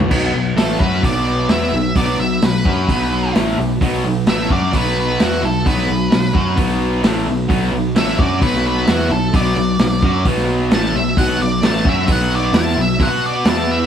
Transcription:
0.00 floor tom
0.09 B1 B2 F#3 B3, kick, crash
0.33 B1 B2 F#3
0.56 A1 A2 E3 A3 A4, snare, open hi-hat
0.79 F#2 F#3 C#4 F#4 B4, kick
1.02 B1 B2 F#3 B3 D5, kick, open hi-hat
1.49 E2 E3 B3 E4 E5, snare, open hi-hat
1.72 B1 B2 F#3
1.95 B1 B2 F#3 B3 D5, kick, open hi-hat
2.19 B1 B2 F#3 E5
2.42 B1 B2 F#3 B4, snare, open hi-hat
2.65 F#2 F#3 C#4 F#4, kick
2.88 B1 B2 F#3 B3, kick, open hi-hat
3.35 A1 A2 E3 A3, snare, open hi-hat
3.58 B1 B2 F#3
3.81 B1 B2 F#3 B3, kick, open hi-hat
4.04 B1 B2 F#3
4.27 A1 A2 E3 A3 E5, snare, open hi-hat
4.50 F#2 F#3 C#4 F#4 D5, kick
4.73 B1 B2 F#3 B3 B4, kick, open hi-hat
5.00 B4
5.20 E2 E3 B3 E4 F#4, snare, open hi-hat
5.42 B1 B2 F#3 A4
5.65 B1 B2 F#3 B3 B4, kick, open hi-hat
5.89 B1 B2 F#3
6.11 B1 B2 F#3, snare, open hi-hat
6.34 F#2 F#3 C#4 F#4, kick
6.56 B1 B2 F#3 B3, kick, open hi-hat
7.02 A1 A2 E3 A3, snare, open hi-hat
7.27 B1 B2 F#3
7.49 B1 B2 F#3 B3, kick, open hi-hat
7.72 B1 B2 F#3
7.95 A1 A2 E3 A3 E5, snare, open hi-hat
8.18 F#2 F#3 C#4 F#4 D5, kick
8.40 B1 B2 F#3 B3 B4, kick, open hi-hat
8.55 snare
8.67 B4
8.86 E2 E3 B3 E4 F#4, snare, open hi-hat
9.10 B1 B2 F#3 A4
9.33 B1 B2 F#3 B3 D5, kick, open hi-hat
9.56 B1 B2 F#3
9.79 B1 B2 F#3, snare, open hi-hat
10.02 F#2 F#3 C#4 F#4, kick
10.25 B1 B2 F#3 B3, kick, open hi-hat
10.37 snare
10.71 A1 A2 E3 A3 A5, snare, open hi-hat
10.93 B1 B2 F#3 E5
11.17 B1 B2 F#3 B3 F#5, kick, open hi-hat
11.38 B1 B2 F#3 D5
11.61 A1 A2 E3 A3, snare, open hi-hat
11.66 A5
11.85 F#2 F#3 C#4 F#4 E5, kick
12.07 B1 B2 F#3 B3, kick, open hi-hat
12.12 F#5
12.36 D5
12.53 E2 E3 B3 E4, snare, open hi-hat
12.59 A5
12.76 B1 B2 F#3
12.81 E5
12.99 B2 B3 F#4 B4 F#5, kick, open hi-hat
13.26 D5
13.45 E2 E3 B3 E4, snare, open hi-hat
13.49 A5
13.72 E5

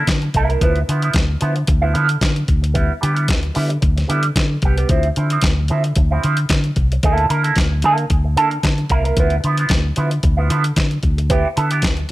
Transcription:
0.07 D3, muted clean electric guitar stroke, kick, snare, clap, closed hi-hat
0.22 muted clean electric guitar stroke, closed hi-hat
0.34 C2 A#3 E4 A#4, kick, closed hi-hat
0.49 A#3 E4 A#4, closed hi-hat
0.61 D2 F3 B3 E4, kick, closed hi-hat
0.76 closed hi-hat
0.89 D3 F3 B3 E4, closed hi-hat
1.02 F3 B3 E4, closed hi-hat
1.14 D2, kick, snare, clap, closed hi-hat
1.29 muted clean electric guitar stroke
1.41 D3 F3 B3 E4, closed hi-hat
1.55 muted clean electric guitar stroke, closed hi-hat
1.67 D2, muted clean electric guitar stroke, kick, closed hi-hat
1.82 F3 B3 E4
1.94 D3 F3 B3 E4, closed hi-hat
2.08 muted clean electric guitar stroke, closed hi-hat
2.21 D3, muted clean electric guitar stroke, kick, snare, clap, closed hi-hat
2.36 muted clean electric guitar stroke, closed hi-hat
2.48 D2, kick, closed hi-hat
2.62 muted clean electric guitar stroke, closed hi-hat
2.74 G3 B3 E4, kick, closed hi-hat
3.01 D3 G3 B3 G4, closed hi-hat
3.14 G3 B3 E4, closed hi-hat
3.28 D2, kick, snare, clap, closed hi-hat
3.43 muted clean electric guitar stroke, closed hi-hat
3.54 D3 G3 B3 E4, open hi-hat
3.70 muted clean electric guitar stroke, closed hi-hat
3.81 D2, muted clean electric guitar stroke, kick, closed hi-hat
3.97 muted clean electric guitar stroke, snare, closed hi-hat
4.08 D3 G3 B3 E4, closed hi-hat
4.23 muted clean electric guitar stroke, closed hi-hat
4.36 D3, muted clean electric guitar stroke, kick, snare, clap, closed hi-hat
4.51 muted clean electric guitar stroke
4.62 C2 G3 B3 G4, kick, closed hi-hat
4.78 G3 B3 G4, closed hi-hat
4.89 D2 F3 C4 E4, kick, closed hi-hat
5.03 closed hi-hat
5.16 D3 F3 C4 E4, closed hi-hat
5.30 F3 C4 E4, closed hi-hat
5.41 D2, kick, snare, clap, closed hi-hat
5.58 muted clean electric guitar stroke
5.68 D3 F3 C4 E4, closed hi-hat
5.84 muted clean electric guitar stroke, closed hi-hat
5.96 D2, muted clean electric guitar stroke, kick, closed hi-hat
6.11 F3 C4 E4
6.24 D3 F3 C4 E4, closed hi-hat
6.37 muted clean electric guitar stroke, closed hi-hat
6.49 D3, muted clean electric guitar stroke, kick, snare, clap, closed hi-hat
6.64 muted clean electric guitar stroke, closed hi-hat
6.76 C2, kick, closed hi-hat
6.92 muted clean electric guitar stroke, closed hi-hat
7.03 D2 A#3 E4 A4, kick, closed hi-hat
7.18 closed hi-hat
7.29 D3 A#3 E4 A#4, closed hi-hat
7.44 A#3 E4 A4, closed hi-hat
7.56 D2, kick, snare, clap, closed hi-hat
7.72 muted clean electric guitar stroke
7.82 D3 A#3 E4 A4, closed hi-hat
7.98 muted clean electric guitar stroke, closed hi-hat
8.10 D2, kick, closed hi-hat
8.24 muted clean electric guitar stroke
8.36 D3 A#3 E4 A4, closed hi-hat
8.50 muted clean electric guitar stroke, closed hi-hat
8.63 D3, muted clean electric guitar stroke, kick, snare, clap, closed hi-hat
8.78 muted clean electric guitar stroke, closed hi-hat
8.90 C2 A#3 E4 A#4, kick, closed hi-hat
9.04 A#3 E4 A#4, closed hi-hat
9.17 D2 F3 B3 E4, kick, closed hi-hat
9.30 closed hi-hat
9.44 D3 F3 B3 E4, closed hi-hat
9.57 F3 B3 E4, closed hi-hat
9.69 D2, kick, snare, clap, closed hi-hat
9.85 muted clean electric guitar stroke
9.96 D3 F3 B3 E4, closed hi-hat
10.11 muted clean electric guitar stroke, closed hi-hat
10.23 D2, muted clean electric guitar stroke, kick, closed hi-hat
10.37 F3 B3 E4
10.50 D3 F3 B3 E4, closed hi-hat
10.64 muted clean electric guitar stroke, closed hi-hat
10.76 D3, muted clean electric guitar stroke, kick, snare, clap, closed hi-hat
10.91 muted clean electric guitar stroke, closed hi-hat
11.03 D2, kick, closed hi-hat
11.18 muted clean electric guitar stroke, closed hi-hat
11.30 B3 E4 G4, kick, closed hi-hat
11.56 D3 B3 E4 A4, closed hi-hat
11.71 B3 E4 G4, closed hi-hat
11.82 D2, kick, snare, clap, closed hi-hat
11.97 muted clean electric guitar stroke, closed hi-hat

